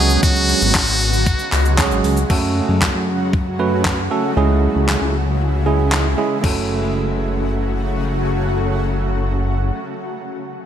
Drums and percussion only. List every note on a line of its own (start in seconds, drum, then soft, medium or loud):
0.10 shaker medium
0.23 kick loud
0.23 closed hi-hat medium
0.23 shaker medium
0.36 shaker soft
0.49 open hi-hat medium
0.49 tambourine soft
0.49 shaker medium
0.62 shaker medium
0.75 kick loud
0.75 snare medium
0.75 clap loud
0.75 closed hi-hat medium
0.75 tambourine medium
0.75 shaker medium
0.88 shaker medium
1.00 open hi-hat medium
1.00 tambourine medium
1.00 shaker soft
1.13 shaker medium
1.26 kick loud
1.26 closed hi-hat medium
1.26 tambourine medium
1.26 shaker medium
1.39 shaker medium
1.52 clap medium
1.52 open hi-hat medium
1.52 tambourine medium
1.52 shaker medium
1.66 shaker medium
1.78 kick loud
1.78 snare medium
1.78 clap loud
1.78 closed hi-hat medium
1.78 tambourine loud
1.78 shaker medium
1.91 shaker medium
2.04 open hi-hat medium
2.04 shaker medium
2.17 shaker medium
2.30 kick loud
2.30 crash medium
2.82 kick loud
2.82 snare medium
2.82 clap loud
3.33 kick loud
3.85 kick loud
3.85 snare medium
3.85 clap loud
4.89 snare medium
4.89 clap loud
5.92 snare medium
5.92 clap loud
6.44 kick loud
6.44 crash medium